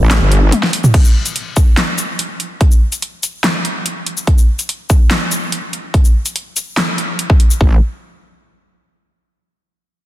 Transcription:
0.01 wobble bass A1
0.11 snare, clap, closed hi-hat
0.21 wobble bass G1
0.32 closed hi-hat
0.52 closed hi-hat, high tom
0.63 snare
0.73 open hi-hat
0.84 mid tom, shaker
0.94 kick, closed hi-hat, crash
1.05 shaker
1.26 closed hi-hat, shaker
1.36 closed hi-hat
1.57 kick, closed hi-hat, shaker
1.77 snare, clap, closed hi-hat
1.98 closed hi-hat, shaker
2.19 closed hi-hat
2.40 closed hi-hat
2.61 kick, closed hi-hat
2.71 shaker
2.92 closed hi-hat, shaker
3.02 closed hi-hat
3.23 closed hi-hat, shaker
3.44 snare, clap, closed hi-hat
3.65 closed hi-hat
3.86 closed hi-hat
4.06 closed hi-hat
4.17 shaker
4.27 kick, closed hi-hat
4.38 shaker
4.59 closed hi-hat, shaker
4.69 closed hi-hat
4.90 kick, closed hi-hat, shaker
5.11 snare, clap, closed hi-hat
5.32 closed hi-hat, shaker
5.52 closed hi-hat
5.73 closed hi-hat
5.94 kick, closed hi-hat
6.05 shaker
6.26 closed hi-hat, shaker
6.36 closed hi-hat
6.56 closed hi-hat, shaker
6.77 snare, clap, closed hi-hat
6.98 closed hi-hat
7.19 closed hi-hat
7.30 kick
7.40 closed hi-hat
7.51 shaker
7.61 wobble bass A1, kick

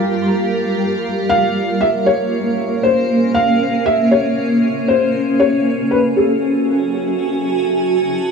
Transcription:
Already playing: ambient pad G3 F4 G4 A#4 F5, felt piano F5
1.29 ambient pad A#3, felt piano F5
1.81 felt piano E5
1.86 ambient pad C#4
2.06 felt piano C#5
2.83 felt piano C5
3.34 felt piano F5
3.86 felt piano E5
4.11 felt piano C#5
4.88 felt piano C5
5.40 ambient pad F#4, felt piano C#5
5.74 ambient pad E5
5.91 felt piano B4
5.97 ambient pad G#5
6.17 felt piano A4
6.30 ambient pad A5

